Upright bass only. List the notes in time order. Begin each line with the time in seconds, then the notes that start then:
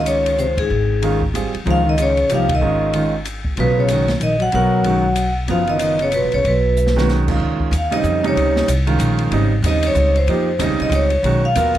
Already playing: C#2
0.70 G#1
1.55 muted upright bass stroke
1.66 C#2
2.30 C2
2.62 G#1
3.58 B1
4.20 A#1
4.53 B1
5.48 F#1
6.24 B1
6.34 C2
6.44 B1
7.40 C#2
7.60 muted upright bass stroke
7.71 D#2
8.03 F2
8.35 C#2
8.68 C2
8.99 A#1
9.32 G#1
9.62 D#2
9.95 C#2
10.27 F2
10.59 D#2
10.70 C#2
10.81 C2
10.90 C#2
11.23 B1
11.55 D#2